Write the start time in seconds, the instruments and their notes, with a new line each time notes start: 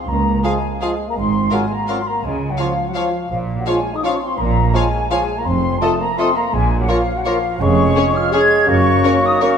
0.07 double bass section C#2, cello section C#2, french horn section A#3, flute section A#5
0.43 bassoon F3, french horn section G#3, viola section F4, clarinet F4, violin section G#4 F5, cor anglais G#4, flute section G#5
0.81 bassoon F3, french horn section G#3, viola section F4, clarinet F4, violin section G#4 F5, cor anglais G#4, flute section G#5
1.08 french horn section A#3, flute section A#5
1.16 double bass section G#1, cello section G#2, french horn section C4, flute section C6
1.51 bassoon F#3, french horn section G#3, clarinet F4, viola section F#4, violin section A#4 F5, cor anglais A#4, flute section G#5
1.71 french horn section A#3, flute section A#5
1.88 bassoon F#3, french horn section C4, clarinet F4, viola section F#4, violin section A#4 F5, cor anglais A#4, flute section C6
2.07 french horn section A#3, flute section A#5
2.24 double bass section C#2, cello section C#3, french horn section G#3, flute section G#5
2.50 french horn section F#3, flute section F#5
2.58 bassoon F3, french horn section F3, viola section F4, clarinet F4, violin section C#5 F5, cor anglais C#5, flute section F5
2.88 french horn section F#3, flute section F#5
2.95 french horn section F3, bassoon F3, viola section F4, clarinet F4, violin section C#5 F5, cor anglais C#5, flute section F5
3.31 double bass section A#1, cello section A#2, french horn section F3, flute section F5
3.57 french horn section F#3, flute section F#5
3.66 bassoon F3, french horn section G#3, clarinet F4, viola section F4, violin section C#5 F5, cor anglais C#5, flute section G#5
3.95 french horn section D#4, flute section D#6
4.03 bassoon F3, french horn section C#4, clarinet F4, viola section F4, violin section C#5 F5, cor anglais C#5, flute section C#6
4.21 french horn section C4, flute section C6
4.38 double bass section A#1, cello section A#2, french horn section A#3, flute section A#5
4.74 bassoon F3, french horn section G#3, viola section F4, clarinet F4, violin section C#5 F5, cor anglais C#5, flute section G#5
5.11 bassoon F3, french horn section G#3, viola section F4, clarinet F4, violin section C#5 F5, cor anglais C#5, flute section G#5
5.38 french horn section A#3, flute section A#5
5.45 double bass section F1, cello section F2, french horn section C4, flute section C6
5.80 french horn section A3, bassoon A3, viola section F4, clarinet F4, violin section A4 D#5, cor anglais D#5, flute section A5
6.00 french horn section A#3, flute section A#5
6.17 bassoon A3, french horn section C4, viola section F4, clarinet F4, violin section A4 D#5, cor anglais D#5, flute section C6
6.35 french horn section A#3, flute section A#5
6.53 double bass section A#1, cello section A#2, french horn section G#3, flute section G#5
6.79 french horn section F#3, flute section F#5
6.88 french horn section F3, bassoon A#3, clarinet F4, viola section F4, violin section A#4 C#5, cor anglais C#5, flute section F5
7.16 french horn section F#3, flute section F#5
7.25 french horn section F3, bassoon A#3, viola section F4, clarinet F4, violin section A#4 C#5, cor anglais C#5, flute section F5
7.60 double bass section F1, cello section F2, bassoon G#3, french horn section C#4, clarinet G#4, cor anglais C#5, flute section C#6
7.96 viola section C#4, violin section G#4 C#5
8.14 french horn section F4, flute section F6
8.32 bassoon G#3, viola section C#4, french horn section G#4, violin section G#4 C#5, clarinet G#4, cor anglais C#5, flute section G#6
8.67 double bass section F#1, cello section F#2, bassoon A#3, french horn section C#4, clarinet F#4, cor anglais C#5, flute section C#6
9.04 viola section C#4, violin section A#4 C#5
9.23 french horn section D#4, flute section D#6
9.40 bassoon A#3, french horn section C#4, viola section C#4, clarinet F#4, violin section A#4 C#5, cor anglais C#5, flute section C#6